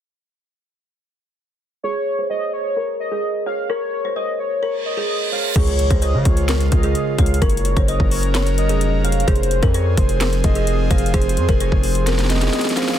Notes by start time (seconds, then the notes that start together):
1.83 G#4 C#5
2.19 C5
2.30 C#5 D#5
2.53 C#5
2.76 A#4
3.00 D#5
3.12 G#4
3.46 C#5 F5
3.70 A#4 C#5
4.05 C5
4.16 C#5 D#5
4.40 C#5
4.63 A#4, reverse cymbal
4.86 D#5
4.97 G#4
5.32 C#5 F5
5.56 C#2 C#3 G#3 F4 G#4 C#5, kick, closed hi-hat, crash, impact
5.67 closed hi-hat
5.79 closed hi-hat
5.90 C#2 C5, kick, closed hi-hat
6.02 C#5 D#5, closed hi-hat
6.14 C#3
6.25 C#2 C#5, kick, closed hi-hat
6.37 closed hi-hat
6.49 A#4, snare, clap, closed hi-hat
6.61 closed hi-hat
6.72 C#2 D#5, kick, closed hi-hat
6.83 G#4, closed hi-hat
6.95 closed hi-hat
7.18 C#2 C#5 F5, kick, closed hi-hat
7.26 closed hi-hat
7.34 closed hi-hat
7.42 F#1 F#3 C#4 A#4 C#5, kick, closed hi-hat
7.50 closed hi-hat
7.57 closed hi-hat
7.65 closed hi-hat
7.77 F#1 C5, kick, closed hi-hat
7.88 C#5 D#5, closed hi-hat
8.00 F#1, kick
8.11 C#5, open hi-hat
8.23 closed hi-hat
8.35 A#4, snare, clap, closed hi-hat
8.47 closed hi-hat
8.58 D#5, closed hi-hat
8.69 F1 G#4, closed hi-hat
8.81 closed hi-hat
9.04 C#5 F5, closed hi-hat
9.12 closed hi-hat
9.20 closed hi-hat
9.28 F1 F3 C4 G#4 C5, kick, closed hi-hat
9.36 closed hi-hat
9.43 closed hi-hat
9.51 closed hi-hat
9.63 F2 A#4, kick, closed hi-hat
9.74 C5 C#5, closed hi-hat
9.97 F1 C5, kick, closed hi-hat
10.09 closed hi-hat
10.21 A#4, snare, clap, closed hi-hat
10.33 closed hi-hat
10.44 F1 D#5, kick, closed hi-hat
10.55 G#4, closed hi-hat
10.67 closed hi-hat
10.91 F1 C5 F5, kick, closed hi-hat
10.98 closed hi-hat
11.06 closed hi-hat
11.14 F1 G#4 C5, kick, closed hi-hat
11.22 closed hi-hat
11.29 closed hi-hat
11.37 F2, closed hi-hat
11.49 F1 A#4, kick, closed hi-hat
11.60 C5 C#5, closed hi-hat
11.72 F1, kick
11.83 C5, open hi-hat
11.95 closed hi-hat
12.07 A#4, snare, closed hi-hat
12.13 snare
12.19 snare, closed hi-hat
12.24 snare
12.30 D#5, snare, closed hi-hat
12.36 snare
12.41 G#4, snare, closed hi-hat
12.48 snare
12.53 snare, closed hi-hat
12.59 snare, closed hi-hat
12.65 snare, closed hi-hat
12.71 snare
12.77 C5 F5, snare, closed hi-hat
12.82 snare
12.88 snare
12.94 snare